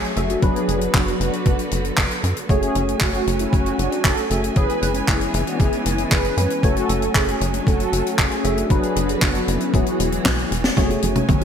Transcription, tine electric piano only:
Already playing: A3 F#4 C#5 G#5
0.17 A3 F#4 G#4 E5
0.43 F#3 B3 D4 B4
2.49 A3 F#4 G#4 C#5
4.30 A3 F#4 G#4 E5
4.56 E3 B3 C#4 G#4
6.38 E3 B3 C#4 B4
6.63 A3 F#4 C#5 G#5
8.44 A3 F#4 G#4 E5
8.70 F#3 B3 D4 B4
9.74 F#3 B3 E4 G#4
10.77 A3 F#4 G#4 C#5

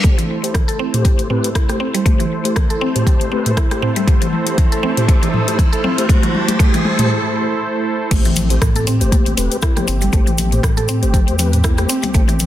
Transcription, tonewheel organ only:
0.04 A3 G4 C5
0.43 A3 G4 C5
0.94 A3 G4 C5
1.30 A3 G4 B4
1.69 A3 G4 C5
2.06 A3 G4 C5
2.45 A3 G4 C5
2.95 A3 G4 C5
3.32 A3 G4 B4
3.71 A3 G4 C5
4.07 A3 G4 C5
4.47 A3 G4 C5
4.97 A3 G4 C5
5.09 A3 G4 C5
5.48 A3 G4 C5
5.98 A3 G4 C5
6.09 A3 G4 C5
6.49 A3 G4 C5
6.60 A3 G4 C5
6.99 A3 G4 C5
8.11 A3 G4 C5
8.50 A3 G4 C5
9.01 A3 G4 C5
9.37 A3 G4 B4
9.76 A3 G4 C5
10.13 A3 G4 C5
10.52 A3 G4 C5
11.02 A3 G4 C5
11.39 A3 G4 B4
11.78 A3 G4 C5
12.14 A3 G4 C5

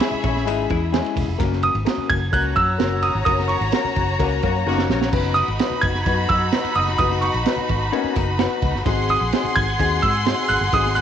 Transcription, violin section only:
Already playing: G#4 E5 B5
2.33 F#4 C#5 A#5
5.13 D#4 F#4 B5
8.86 G#4 F#5 C6

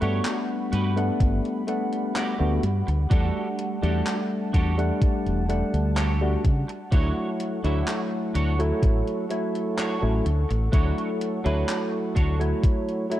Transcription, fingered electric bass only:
0.02 G2
0.73 G2
1.20 G1
2.40 D2
2.63 G2
2.88 D2
3.11 E2
3.83 E2
4.54 E2
5.26 E1
5.74 D2
6.45 C#3
6.92 D2
7.64 D2
8.35 D2
8.83 A1
10.03 A1
10.26 D2
10.50 A1
10.73 D2
11.46 D2
12.16 D2

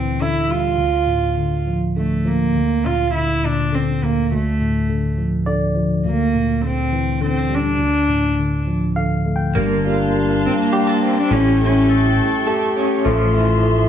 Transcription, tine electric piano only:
Already playing: D2 A#2 D3 E3
0.21 D3
0.49 G3
0.78 D2
1.06 A2
1.37 D3
1.67 F3
1.97 D3
2.25 F3
2.54 D2
2.85 A#2
3.15 D3
3.44 A#2
3.72 D3
4.03 D2
4.31 D2
4.61 A2
4.89 D3
5.18 F3
5.46 D3 D5
5.76 F3
6.05 D2
6.34 A#2
6.63 D3
6.92 E3
7.21 D3
7.49 G3
7.79 D2
8.08 A2
8.39 D3
8.67 F3
8.96 D3 F5
9.26 A3
9.36 G5
9.56 G3
9.86 G3
10.15 G3
10.73 G3
11.31 A3
11.61 A3
11.89 A3
12.47 A3
13.05 A3
13.34 A3
13.63 A3

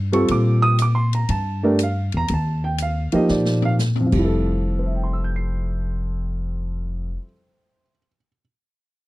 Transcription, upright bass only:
Already playing: G2
0.29 A#2
1.29 G2
2.14 E2
2.30 D#2
3.14 muted upright bass stroke
3.30 A#2
4.12 F1

